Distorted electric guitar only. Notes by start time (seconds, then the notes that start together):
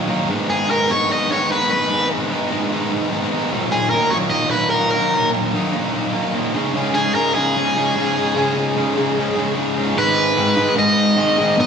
0.08 D#3 F#3 A#3 D#4
0.29 G#2 D#3 G#3 B3 D#4
0.49 G#3 B3 D#4
0.69 D#3 G#3 B3 D#4
0.89 G#2 D#3 G#3 B3 D#4
1.10 D#3 G#3 B3 D#4
1.29 G#2 D#3 G#3 B3 D#4
1.50 D#3 G#3 B3 D#4
1.70 G#3 B3 D#4
1.90 G#2 D#3 G#3 B3 D#4
2.10 G#3 B3 D#4
2.30 D#3 G#3 B3 D#4
2.51 G#2 D#3 G#3 B3 D#4
2.71 D#3 G#3 B3 D#4
2.90 G#2 D#3 G#3 B3 D#4
3.11 D#3 G#3 B3 D#4
3.31 G#3 B3 D#4
3.52 D#2 A#2 D#3 F#3 A#3 D#4
3.71 D#3 F#3 A#3 D#4
3.92 D#3 F#3 A#3 D#4
4.12 D#2 A#2 D#3 F#3 A#3 D#4
4.31 D#3 F#3 A#3 D#4
4.52 D#2 A#2 D#3 F#3 A#3 D#4
4.72 D#3 F#3 A#3 D#4
4.93 D#3 F#3 A#3 D#4
5.12 D#2 A#2 D#3 F#3 A#3 D#4
5.33 D#3 F#3 A#3 D#4
5.53 D#3 F#3 A#3 D#4
5.72 D#2 A#2 D#3 F#3 A#3 D#4
5.92 D#3 F#3 A#3 D#4
6.13 D#2 A#2 D#3 F#3 A#3 D#4
6.33 D#3 F#3 A#3 D#4
6.54 C#3 G#3 C#4 D#4 G#4
6.73 C#3 G#3 C#4 D#4 G#4
6.94 C#4 D#4 G#4
7.15 G#3 C#4 D#4 G#4
7.36 C#3 G#3 C#4 D#4 G#4
7.56 G#3 C#4 D#4 G#4
7.75 C#3 G#3 C#4 D#4 G#4
7.96 G#3 C#4 D#4 G#4
8.16 C#4 D#4 G#4
8.35 C#3 G#3 C#4 D#4 G#4
8.56 C#4 D#4 G#4
8.76 G#3 C#4 D#4 G#4
8.96 C#3 G#3 C#4 D#4 G#4
9.17 G#3 C#4 D#4 G#4
9.36 C#3 G#3 C#4 D#4 G#4
9.55 G#3 C#4 D#4 G#4
9.75 C#4 D#4 G#4
9.96 G#2 D#3 G#3
10.37 G#2 D#3 G#3
10.57 G#2 D#3 G#3
10.76 G#2 D#3 G#3
11.16 G#2 D#3 G#3
11.37 G#2 D#3 G#3
11.57 B2 F#3 B3